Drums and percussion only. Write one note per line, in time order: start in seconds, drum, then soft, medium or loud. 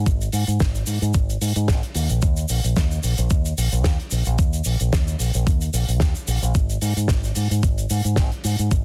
0.06 kick loud
0.06 closed hi-hat medium
0.06 shaker medium
0.21 closed hi-hat soft
0.21 shaker soft
0.32 open hi-hat loud
0.32 shaker medium
0.47 closed hi-hat medium
0.47 shaker soft
0.60 kick loud
0.60 snare loud
0.60 closed hi-hat medium
0.60 shaker medium
0.75 closed hi-hat soft
0.75 shaker soft
0.87 open hi-hat medium
0.87 shaker medium
1.02 closed hi-hat medium
1.02 shaker medium
1.14 kick loud
1.14 closed hi-hat medium
1.14 shaker medium
1.30 closed hi-hat medium
1.30 shaker soft
1.41 open hi-hat loud
1.41 shaker medium
1.56 closed hi-hat medium
1.56 shaker soft
1.68 kick loud
1.68 snare loud
1.68 closed hi-hat medium
1.68 shaker medium
1.83 closed hi-hat soft
1.95 open hi-hat loud
1.95 shaker medium
2.09 closed hi-hat medium
2.09 shaker soft
2.22 kick loud
2.22 closed hi-hat medium
2.22 shaker medium
2.37 closed hi-hat soft
2.37 shaker soft
2.49 open hi-hat loud
2.49 shaker medium
2.64 closed hi-hat medium
2.64 shaker medium
2.76 kick loud
2.76 snare loud
2.76 closed hi-hat medium
2.76 shaker medium
2.91 closed hi-hat soft
2.91 shaker soft
3.03 open hi-hat loud
3.03 shaker medium
3.18 closed hi-hat medium
3.18 shaker soft
3.30 kick loud
3.30 closed hi-hat medium
3.30 shaker medium
3.45 closed hi-hat soft
3.45 shaker soft
3.58 open hi-hat loud
3.58 shaker medium
3.72 closed hi-hat medium
3.72 shaker soft
3.84 kick loud
3.84 snare loud
3.84 closed hi-hat medium
3.84 shaker medium
4.00 closed hi-hat soft
4.11 open hi-hat loud
4.11 shaker medium
4.25 closed hi-hat medium
4.25 shaker soft
4.38 kick loud
4.38 closed hi-hat medium
4.38 shaker medium
4.53 closed hi-hat soft
4.53 shaker soft
4.64 open hi-hat loud
4.64 shaker medium
4.80 closed hi-hat medium
4.80 shaker medium
4.93 kick loud
4.93 snare loud
4.93 closed hi-hat medium
4.93 shaker medium
5.07 closed hi-hat soft
5.07 shaker soft
5.19 open hi-hat medium
5.19 shaker medium
5.34 closed hi-hat medium
5.34 shaker soft
5.47 kick loud
5.47 closed hi-hat medium
5.47 shaker medium
5.61 closed hi-hat soft
5.61 shaker soft
5.74 open hi-hat loud
5.74 shaker medium
5.89 closed hi-hat medium
5.89 shaker soft
6.00 kick loud
6.00 snare loud
6.00 closed hi-hat medium
6.00 shaker medium
6.15 closed hi-hat soft
6.15 shaker medium
6.28 open hi-hat loud
6.28 shaker medium
6.42 closed hi-hat medium
6.42 shaker soft
6.55 kick loud
6.55 closed hi-hat medium
6.55 shaker medium
6.70 closed hi-hat soft
6.70 shaker soft
6.81 open hi-hat loud
6.81 shaker medium
6.97 closed hi-hat medium
6.97 shaker medium
7.08 kick loud
7.08 snare loud
7.08 closed hi-hat medium
7.08 shaker medium
7.24 closed hi-hat soft
7.24 shaker soft
7.35 open hi-hat medium
7.35 shaker medium
7.51 closed hi-hat medium
7.51 shaker soft
7.63 kick loud
7.63 closed hi-hat medium
7.63 shaker medium
7.78 closed hi-hat soft
7.78 shaker soft
7.90 open hi-hat loud
7.90 shaker medium
8.04 closed hi-hat medium
8.04 shaker medium
8.16 kick loud
8.16 snare loud
8.16 closed hi-hat medium
8.16 shaker medium
8.32 closed hi-hat soft
8.44 open hi-hat loud
8.44 shaker medium
8.59 closed hi-hat medium
8.59 shaker soft
8.71 kick loud
8.71 closed hi-hat medium
8.71 shaker medium